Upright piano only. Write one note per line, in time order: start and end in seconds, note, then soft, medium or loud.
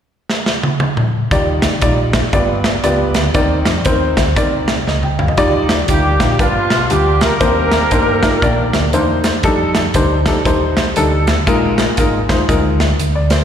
1.31 2.10 D#3 medium
1.31 1.68 G3 medium
1.31 1.68 D#4 medium
1.31 1.69 F4 medium
1.31 1.68 D5 medium
1.82 2.19 G3 medium
1.82 2.19 D#4 medium
1.82 2.19 F4 medium
1.82 2.19 D5 medium
2.33 3.12 G2 medium
2.33 2.70 B3 medium
2.33 2.70 F4 medium
2.33 2.70 G4 medium
2.33 2.70 D5 medium
2.84 3.21 B3 medium
2.84 3.21 F4 medium
2.84 3.21 G4 medium
2.84 3.21 D5 medium
3.34 4.13 D#3 medium
3.34 3.72 C4 medium
3.34 3.72 D#4 medium
3.34 3.72 A#4 medium
3.34 3.72 D5 medium
3.86 4.23 C4 medium
3.86 4.23 D#4 medium
3.86 4.23 A#4 medium
3.86 4.23 C5 medium
4.37 4.74 C4 medium
4.37 4.73 D#4 medium
4.37 4.74 A#4 medium
4.37 4.74 D5 medium
4.88 5.03 D#5 medium
5.03 5.18 G5 medium
5.19 5.28 F5 medium
5.29 5.53 D#5 medium
5.37 6.16 D#3 medium
5.37 5.75 G3 loud
5.37 5.75 D#4 loud
5.37 5.75 F4 medium
5.37 5.75 D5 loud
5.88 6.09 G3 medium
5.88 6.09 D#4 medium
5.88 6.09 F4 medium
5.88 6.09 G4 medium
6.20 6.32 G3 medium
6.20 6.33 D#4 medium
6.20 6.32 F4 medium
6.20 6.32 F5 medium
6.39 7.18 G2 medium
6.39 6.76 G3 medium
6.39 6.76 D4 medium
6.39 6.76 F4 medium
6.39 6.76 B4 medium
6.90 7.27 G3 medium
6.90 7.27 D4 medium
6.90 7.27 F4 medium
6.90 7.27 G4 medium
7.41 8.19 D#3 medium
7.41 7.78 A#3 medium
7.41 7.78 C4 medium
7.41 7.78 D4 medium
7.41 7.78 C5 medium
7.91 8.12 A#3 medium
7.91 8.12 D4 medium
7.91 8.12 D#4 medium
7.91 8.12 C5 medium
8.23 8.35 A#3 medium
8.23 8.35 D4 medium
8.23 8.35 D#4 medium
8.23 8.35 F4 medium
8.43 8.79 D#3 medium
8.43 8.79 A#3 medium
8.43 8.79 D4 medium
8.43 8.79 D5 medium
8.93 9.30 A#3 medium
8.93 9.30 D4 medium
8.93 9.30 D#4 medium
8.93 9.30 C5 medium
9.44 9.81 G3 loud
9.44 9.81 D4 medium
9.44 9.81 D#4 medium
9.44 9.81 A4 loud
9.95 10.15 G3 medium
9.95 10.15 D4 medium
9.95 10.15 D#4 medium
9.95 10.15 C5 medium
10.27 10.39 G3 medium
10.27 10.39 D4 medium
10.27 10.39 D#4 medium
10.27 10.39 A4 medium
10.46 10.82 G3 medium
10.46 10.83 D4 medium
10.46 10.83 D#4 medium
10.46 10.83 C5 medium
10.96 11.33 G3 medium
10.96 11.33 D4 medium
10.96 11.33 D#4 medium
10.96 11.33 A4 loud
11.47 12.25 A#2 medium
11.47 11.84 G#3 loud
11.47 11.84 D#4 medium
11.47 11.84 F4 medium
11.47 11.84 A#4 loud
11.98 12.18 G#3 medium
11.98 12.18 D#4 medium
11.98 12.18 F4 medium
11.98 12.18 A#4 medium
12.30 12.42 G#3 medium
12.30 12.42 D#4 medium
12.30 12.42 F4 medium
12.30 12.42 C5 medium
12.49 12.86 G#3 medium
12.49 12.86 D#4 medium
12.49 12.86 F4 medium
12.49 12.86 A#4 medium
13.15 13.30 D5 medium
13.31 13.40 C5 medium